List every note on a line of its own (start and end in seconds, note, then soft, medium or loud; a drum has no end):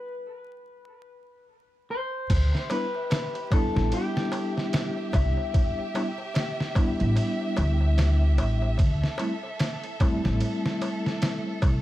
0.00 1.45 B4 loud
1.91 2.71 C5 medium
2.30 2.51 D2 loud
2.30 8.75 G4 medium
2.30 11.82 E5 medium
2.30 kick loud
2.30 crash medium
2.30 ride medium
2.30 darbuka tek medium
2.54 snare soft
2.54 darbuka tek soft
2.70 2.84 G3 medium
2.70 2.85 B3 medium
2.70 2.85 D4 medium
2.70 2.85 E4 medium
2.70 3.53 B4 medium
2.70 ride medium
2.70 darbuka tek medium
2.95 darbuka tek soft
3.10 snare loud
3.10 ride medium
3.10 darbuka tek medium
3.34 ride soft
3.34 darbuka tek soft
3.51 5.90 G3 medium
3.51 5.91 B3 medium
3.51 5.91 D4 medium
3.51 5.92 E4 loud
3.51 3.94 A4 medium
3.51 kick medium
3.51 ride medium
3.51 darbuka tek loud
3.75 3.90 A1 medium
3.75 snare soft
3.75 darbuka tek soft
3.92 5.18 G4 medium
3.92 ride medium
3.92 darbuka tek soft
4.16 snare medium
4.16 darbuka tek soft
4.32 ride medium
4.32 darbuka tek medium
4.57 snare soft
4.57 darbuka tek soft
4.73 snare loud
4.73 ride medium
4.73 darbuka tek soft
4.97 darbuka tek soft
5.13 5.35 C2 medium
5.13 7.54 E5 loud
5.13 kick loud
5.13 ride medium
5.13 darbuka tek medium
5.37 darbuka tek soft
5.54 kick loud
5.54 ride medium
5.54 darbuka tek medium
5.79 darbuka tek soft
5.95 6.08 G3 medium
5.95 6.09 B3 medium
5.95 6.09 D4 medium
5.95 6.09 E4 medium
5.95 ride medium
5.95 darbuka tek loud
6.18 darbuka tek soft
6.34 snare loud
6.34 ride medium
6.34 darbuka tek medium
6.60 snare soft
6.60 darbuka tek soft
6.75 8.76 G3 medium
6.75 8.77 B3 medium
6.75 8.77 D4 medium
6.75 8.78 E4 medium
6.75 kick medium
6.75 ride medium
6.75 darbuka tek medium
6.99 7.15 A1 medium
6.99 ride soft
6.99 darbuka tek soft
7.16 ride medium
7.16 darbuka tek medium
7.41 darbuka tek soft
7.57 8.39 D2 medium
7.57 ride medium
7.57 darbuka tek loud
7.81 darbuka tek soft
7.97 snare loud
7.97 ride medium
7.97 darbuka tek soft
8.22 darbuka tek soft
8.38 8.75 A1 loud
8.38 ride medium
8.38 darbuka tek medium
8.62 darbuka tek soft
8.77 9.00 D2 loud
8.77 11.82 A4 medium
8.77 kick loud
8.77 ride medium
8.77 darbuka tek medium
9.03 snare soft
9.03 darbuka tek soft
9.18 9.33 G3 medium
9.18 9.33 A3 medium
9.18 9.33 C4 medium
9.18 9.34 E4 medium
9.18 ride medium
9.18 darbuka tek loud
9.43 darbuka tek soft
9.59 snare loud
9.59 ride medium
9.59 darbuka tek medium
9.84 ride soft
9.84 darbuka tek soft
10.00 11.82 G3 medium
10.00 11.82 A3 medium
10.00 11.82 C4 medium
10.00 11.82 E4 medium
10.00 kick medium
10.00 ride medium
10.00 darbuka tek loud
10.24 10.40 A1 loud
10.24 snare soft
10.24 darbuka tek soft
10.40 ride medium
10.40 darbuka tek soft
10.66 snare medium
10.66 darbuka tek soft
10.81 ride medium
10.81 darbuka tek medium
11.06 snare soft
11.06 darbuka tek soft
11.22 snare loud
11.22 ride medium
11.22 darbuka tek medium
11.46 darbuka tek soft
11.62 11.82 C2 medium
11.62 kick medium
11.62 ride medium
11.62 darbuka tek loud